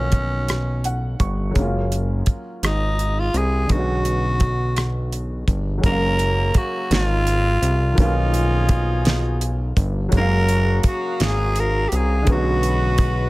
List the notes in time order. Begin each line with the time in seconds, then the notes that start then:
Already playing: B1 D#3 F3 F#3 A#3 C#4
0.12 kick, closed hi-hat
0.48 cross-stick, closed hi-hat
0.84 F#5, closed hi-hat
1.20 G1 C#6, kick, closed hi-hat
1.51 F#3 G#3
1.55 F#1 A#3 C#4, kick, closed hi-hat
1.62 F4
1.92 closed hi-hat
2.26 G#1, kick, closed hi-hat
2.63 G#1 D#4, cross-stick, closed hi-hat
2.99 closed hi-hat
3.19 F4
3.34 C2 G#4, closed hi-hat
3.67 B1 D3 G#3, kick, closed hi-hat
3.72 B3 C#4 F#4
3.77 F#4
4.05 closed hi-hat
4.40 kick, closed hi-hat
4.76 cross-stick, closed hi-hat
5.13 closed hi-hat
5.48 G1, kick, closed hi-hat
5.78 F#3 G#3
5.83 F#1 C#3 F#3 A#3 C#4 A#4, kick, closed hi-hat
5.90 F5
6.19 closed hi-hat
6.54 F#4, kick, closed hi-hat
6.90 G#1 F4, snare, closed hi-hat
7.27 closed hi-hat
7.62 C2, closed hi-hat
7.92 D#3 F#3
7.97 B1 F3 A#3 C#4 D#4 G#4, kick, closed hi-hat
8.01 F4
8.34 closed hi-hat
8.69 kick, closed hi-hat
9.05 snare, closed hi-hat
9.41 closed hi-hat
9.77 G1, kick, closed hi-hat
10.09 F#3 G#3 F#4, kick, closed hi-hat
10.13 F#1 C#3 A#3 F#4 G#4 F5 A#5
10.17 C#4 A#4 F5
10.49 closed hi-hat
10.83 kick, closed hi-hat
10.88 F#4
11.20 G#1 G#4, snare, closed hi-hat
11.56 A#4, closed hi-hat
11.89 C2 G4, closed hi-hat
11.96 G#4
12.22 D3 G#3
12.26 B1 G#3 B3 F#4 B4 B5, kick, closed hi-hat
12.31 C#4 F#4
12.63 closed hi-hat
12.98 kick, closed hi-hat